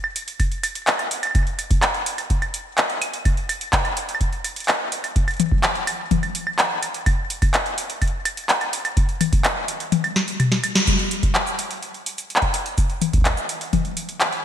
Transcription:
0.04 claves medium
0.16 closed hi-hat medium
0.28 closed hi-hat medium
0.40 kick medium
0.40 closed hi-hat medium
0.40 claves medium
0.52 closed hi-hat soft
0.63 closed hi-hat loud
0.63 claves medium
0.75 closed hi-hat medium
0.87 clap loud
0.87 closed hi-hat medium
0.99 closed hi-hat soft
0.99 claves medium
1.11 closed hi-hat medium
1.23 closed hi-hat medium
1.23 claves medium
1.27 claves medium
1.31 closed hi-hat medium
1.31 claves soft
1.35 kick loud
1.35 claves soft
1.39 claves soft
1.43 closed hi-hat soft
1.43 claves soft
1.59 closed hi-hat medium
1.59 claves soft
1.71 kick loud
1.71 closed hi-hat medium
1.83 clap loud
1.83 closed hi-hat medium
1.83 claves medium
1.94 closed hi-hat soft
2.06 closed hi-hat medium
2.18 closed hi-hat medium
2.18 claves soft
2.30 kick medium
2.30 closed hi-hat medium
2.42 closed hi-hat soft
2.42 claves medium
2.54 closed hi-hat medium
2.78 clap loud
2.78 closed hi-hat medium
2.78 claves soft
2.90 closed hi-hat soft
3.02 closed hi-hat medium
3.02 claves medium
3.14 closed hi-hat soft
3.25 kick loud
3.25 closed hi-hat medium
3.25 claves soft
3.37 closed hi-hat soft
3.49 closed hi-hat medium
3.49 claves medium
3.61 closed hi-hat medium
3.73 kick loud
3.73 clap loud
3.73 closed hi-hat medium
3.85 closed hi-hat soft
3.85 claves medium
3.97 closed hi-hat medium
4.09 closed hi-hat soft
4.15 claves medium
4.21 kick medium
4.21 closed hi-hat medium
4.33 closed hi-hat soft
4.44 closed hi-hat medium
4.44 claves soft
4.56 closed hi-hat soft
4.60 closed hi-hat soft
4.64 clap loud
4.64 closed hi-hat soft
4.68 closed hi-hat soft
4.68 claves medium
4.92 closed hi-hat medium
5.04 closed hi-hat soft
5.04 claves soft
5.16 kick loud
5.16 closed hi-hat soft
5.28 closed hi-hat soft
5.28 claves medium
5.31 closed hi-hat soft
5.34 closed hi-hat soft
5.37 closed hi-hat soft
5.40 closed hi-hat medium
5.40 high tom medium
5.43 closed hi-hat soft
5.49 kick loud
5.49 closed hi-hat soft
5.63 clap loud
5.63 closed hi-hat soft
5.63 claves medium
5.75 closed hi-hat soft
5.87 closed hi-hat medium
5.87 claves medium
6.11 kick medium
6.11 closed hi-hat medium
6.11 high tom loud
6.23 closed hi-hat soft
6.23 claves medium
6.35 closed hi-hat medium
6.47 claves medium
6.59 clap loud
6.59 closed hi-hat soft
6.83 closed hi-hat medium
6.83 claves soft
6.94 closed hi-hat medium
7.06 kick loud
7.06 closed hi-hat medium
7.06 claves medium
7.30 closed hi-hat medium
7.42 kick loud
7.42 closed hi-hat medium
7.42 claves medium
7.54 clap loud
7.54 closed hi-hat medium
7.66 closed hi-hat soft
7.78 closed hi-hat medium
7.90 closed hi-hat medium
8.02 kick medium
8.02 closed hi-hat medium
8.02 claves medium
8.08 closed hi-hat soft
8.25 closed hi-hat medium
8.25 claves medium
8.37 closed hi-hat medium
8.49 clap loud
8.49 closed hi-hat soft
8.61 closed hi-hat soft
8.61 claves medium
8.73 closed hi-hat medium
8.85 closed hi-hat soft
8.85 claves medium
8.97 kick loud
8.97 closed hi-hat medium
9.09 closed hi-hat soft
9.21 closed hi-hat medium
9.21 high tom medium
9.21 claves medium
9.33 kick loud
9.33 closed hi-hat medium
9.44 clap loud
9.44 closed hi-hat medium
9.44 claves medium
9.68 closed hi-hat loud
9.80 closed hi-hat medium
9.92 closed hi-hat medium
9.92 high tom loud
10.04 closed hi-hat soft
10.04 claves medium
10.16 snare medium
10.28 closed hi-hat medium
10.40 closed hi-hat medium
10.40 mid tom medium
10.40 claves medium
10.52 snare medium
10.52 closed hi-hat soft
10.64 closed hi-hat medium
10.64 claves medium
10.75 snare medium
10.75 closed hi-hat medium
10.87 kick loud
10.87 closed hi-hat medium
10.87 cabasa medium
10.99 closed hi-hat soft
11.11 closed hi-hat medium
11.23 kick loud
11.23 closed hi-hat medium
11.35 clap loud
11.35 closed hi-hat medium
11.47 cabasa medium
11.59 closed hi-hat medium
11.71 closed hi-hat medium
11.83 closed hi-hat medium
11.94 closed hi-hat soft
12.06 closed hi-hat medium
12.18 closed hi-hat medium
12.18 cabasa medium
12.30 closed hi-hat soft
12.36 clap loud
12.42 kick medium
12.42 closed hi-hat soft
12.54 closed hi-hat medium
12.66 closed hi-hat medium
12.78 kick loud
12.78 closed hi-hat medium
12.78 cabasa medium
12.90 closed hi-hat soft
13.02 closed hi-hat medium
13.02 high tom medium
13.13 kick loud
13.13 closed hi-hat medium
13.17 kick medium
13.21 kick medium
13.21 clap loud
13.21 closed hi-hat medium
13.25 kick medium
13.29 kick soft
13.33 kick soft
13.33 closed hi-hat soft
13.33 cabasa medium
13.49 closed hi-hat medium
13.61 closed hi-hat medium
13.73 kick medium
13.73 closed hi-hat medium
13.73 high tom medium
13.85 closed hi-hat soft
13.97 closed hi-hat loud
14.09 closed hi-hat medium
14.21 clap loud
14.21 closed hi-hat soft
14.33 closed hi-hat soft

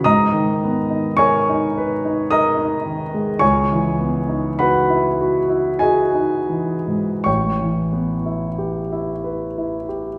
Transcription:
0.04 3.38 G#2 medium
0.04 1.15 D#5 medium
0.04 1.15 A#5 medium
0.04 1.18 D#6 medium
0.32 0.78 D#3 soft
0.64 1.08 B3 soft
0.90 1.35 D#4 soft
1.17 1.64 A#4 soft
1.17 2.26 C#5 medium
1.17 2.26 G#5 medium
1.17 2.29 C#6 medium
1.49 1.93 D#4 medium
1.78 2.20 B4 soft
2.05 2.47 D#4 soft
2.31 2.75 A#4 medium
2.31 3.39 D#5 medium
2.31 3.39 A#5 medium
2.31 3.42 D#6 medium
2.57 3.02 D#4 soft
2.85 3.30 D#3 soft
3.14 3.42 G#3 soft
3.39 7.23 C#2 medium
3.39 4.54 C#5 medium
3.39 4.54 G#5 medium
3.39 4.57 C#6 medium
3.72 4.18 E3 soft
4.01 4.47 B3 soft
4.29 4.76 D#4 soft
4.59 5.07 F#4 soft
4.59 5.78 B4 medium
4.59 5.78 F#5 medium
4.59 5.81 B5 medium
4.90 5.37 E4 soft
5.21 5.69 F#4 soft
5.49 6.01 E4 soft
5.79 6.37 F#4 soft
5.79 7.23 G#4 soft
5.79 7.23 D#5 medium
5.79 7.26 G#5 medium
6.15 6.75 D#4 soft
6.50 7.11 E3 soft
6.88 7.26 G#2 soft
7.24 10.18 A1 soft
7.24 9.85 C#5 soft
7.24 9.85 G5 soft
7.24 9.88 C#6 medium
7.61 8.15 E3 soft
7.92 8.46 B3 soft
8.26 8.79 E4 soft
8.58 9.12 G4 soft
8.92 9.44 E4 soft
9.24 9.76 B4 soft
9.58 10.08 E4 soft
9.89 10.18 G4 soft

